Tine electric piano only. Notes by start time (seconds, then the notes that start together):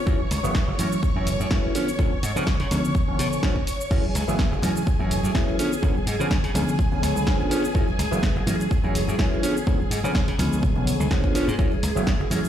0.06 E3 F#3 A3 C#4
0.43 E3 F#3 A3 B3
0.78 E3 F#3 A3 C#4
1.15 E3 F#3 A3 C#4
1.51 E3 F#3 A3 C#4
1.75 D3 F3 B3 C#4
1.99 D3 F3 B3 C#4
2.36 D3 F3 B3 C#4
2.71 D3 F3 B3 C#4
3.07 D3 F3 B3 C#4
3.43 D3 F3 B3 C#4
3.91 E3 F#3 A3 C#4
4.27 E3 F#3 A3 B3
4.62 E3 F#3 A3 C#4
4.99 E3 F#3 A3 C#4
5.34 E3 F#3 A3 C#4
5.58 D3 F3 B3 C#4
5.82 D3 F3 B3 C#4
6.19 D3 F3 B3 C#4
6.54 D3 F3 B3 C#4
6.91 D3 F3 B3 C#4
7.27 D3 F3 B3 C#4
7.50 D3 F3 B3 C#4
7.74 E3 F#3 A3 C#4
8.11 E3 F#3 A3 B3
8.46 E3 F#3 A3 C#4
8.83 E3 F#3 A3 C#4
9.19 E3 F#3 A3 C#4
9.43 D3 F3 B3 C#4
9.67 D3 F3 B3 C#4
10.04 D3 F3 B3 C#4
10.39 D3 F3 B3 C#4
10.75 D3 F3 B3 C#4
11.11 D3 F3 B3 C#4
11.35 D3 F3 B3 C#4
11.58 E3 F#3 A3 C#4
11.95 E3 F#3 A3 B3
12.30 E3 F#3 A3 C#4